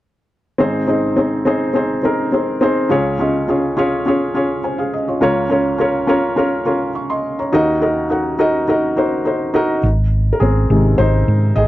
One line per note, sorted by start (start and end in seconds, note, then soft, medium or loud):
0.58 2.86 G#1 medium
0.58 2.87 G#2 soft
0.58 0.83 C4 medium
0.58 0.83 D#4 medium
0.58 0.84 G#4 medium
0.58 0.84 C5 medium
0.87 1.12 C4 medium
0.87 1.12 D#4 medium
0.87 1.13 G#4 medium
0.87 1.13 D#5 medium
1.16 1.41 C4 medium
1.16 1.41 D#4 medium
1.16 1.42 G#4 medium
1.16 1.42 C5 medium
1.45 1.70 C4 medium
1.45 1.70 D#4 medium
1.45 1.70 G#4 medium
1.45 1.71 C5 medium
1.74 1.98 C4 medium
1.74 1.99 D#4 medium
1.74 1.99 G#4 medium
1.74 2.00 C5 medium
2.03 2.28 C4 medium
2.03 2.28 D#4 medium
2.03 2.28 G#4 soft
2.03 2.29 A#4 medium
2.32 2.57 C4 medium
2.32 2.57 D#4 medium
2.32 2.57 G#4 medium
2.32 2.57 C5 medium
2.61 2.85 C4 medium
2.61 2.86 D#4 medium
2.61 2.86 G#4 medium
2.61 2.86 C5 medium
2.89 5.18 C#2 medium
2.89 5.18 C#3 medium
2.89 3.14 C#4 medium
2.89 3.14 F4 medium
2.89 3.15 G#4 medium
2.89 3.15 C#5 medium
3.19 3.43 C#4 medium
3.19 3.44 F4 medium
3.19 3.44 G#4 medium
3.19 3.44 D#5 medium
3.48 3.72 C#4 medium
3.48 3.72 F4 medium
3.48 3.73 G#4 medium
3.48 3.73 C#5 medium
3.77 4.01 C#4 medium
3.77 4.01 F4 medium
3.77 4.02 G#4 medium
3.77 4.02 C#5 medium
4.06 4.30 C#4 medium
4.06 4.30 F4 medium
4.06 4.31 G#4 medium
4.06 4.31 C#5 medium
4.34 4.59 C#4 medium
4.34 4.59 F4 medium
4.34 4.59 G#4 medium
4.34 4.60 C#5 medium
4.64 4.78 C5 soft
4.64 4.78 G#5 soft
4.78 4.92 G#4 soft
4.78 4.92 F5 medium
4.93 5.07 D#5 soft
5.08 5.20 F4 soft
5.08 5.21 C#5 soft
5.21 7.49 C#2 medium
5.21 7.49 C#3 medium
5.21 5.45 C#4 medium
5.21 5.46 F4 medium
5.21 5.46 A#4 medium
5.21 5.46 C#5 medium
5.50 5.74 C#4 medium
5.50 5.74 F4 medium
5.50 5.75 A#4 medium
5.50 5.75 C#5 medium
5.78 6.03 C#4 medium
5.78 6.03 F4 medium
5.78 6.04 A#4 medium
5.78 6.04 C#5 medium
6.07 6.32 C#4 medium
6.07 6.32 F4 medium
6.07 6.32 A#4 medium
6.07 6.33 C#5 medium
6.36 6.61 C#4 medium
6.36 6.61 F4 medium
6.36 6.61 A#4 medium
6.36 6.62 C#5 medium
6.65 6.90 C#4 medium
6.65 6.90 F4 medium
6.65 6.90 A#4 medium
6.65 6.91 C#5 medium
6.95 7.09 F5 soft
6.95 7.09 C#6 soft
7.10 7.37 D#5 soft
7.10 7.37 C6 medium
7.39 7.66 C#5 soft
7.39 7.66 A#5 soft
7.52 9.80 D#2 medium
7.52 9.80 D#3 medium
7.52 7.76 D#4 medium
7.52 7.77 F#4 medium
7.52 7.77 A#4 medium
7.52 7.78 D#5 medium
7.81 8.05 D#4 medium
7.81 8.05 F#4 medium
7.81 8.06 A#4 medium
7.81 8.06 D#5 medium
8.10 8.34 D#4 medium
8.10 8.34 F#4 medium
8.10 8.35 A#4 medium
8.10 8.35 F#5 medium
8.39 8.63 D#4 medium
8.39 8.63 F#4 medium
8.39 8.63 A#4 medium
8.39 8.64 D#5 medium
8.68 8.92 D#4 medium
8.68 8.92 F#4 medium
8.68 8.93 A#4 medium
8.68 8.93 D#5 medium
8.97 9.21 D#4 medium
8.97 9.21 F#4 medium
8.97 9.21 A#4 medium
8.97 9.21 C5 medium
9.25 9.49 D#4 medium
9.25 9.50 F#4 soft
9.25 9.50 A#4 soft
9.25 9.50 C5 medium
9.54 9.78 D#4 medium
9.54 9.78 F#4 medium
9.54 9.79 A#4 medium
9.54 9.79 D#5 medium
9.83 10.31 G#1 medium
10.33 10.40 A#4 medium
10.40 10.65 G#1 medium
10.40 10.95 C4 medium
10.40 11.00 G#4 medium
10.70 10.94 G#1 medium
10.70 11.52 C3 soft
10.70 11.53 D#3 soft
10.70 11.53 G#3 soft
10.98 11.22 G#1 medium
10.98 11.53 D#4 medium
10.98 11.58 C5 medium
11.28 11.51 G#2 medium
11.56 11.68 G#1 medium
11.56 11.68 G#4 medium
11.56 11.68 D#5 medium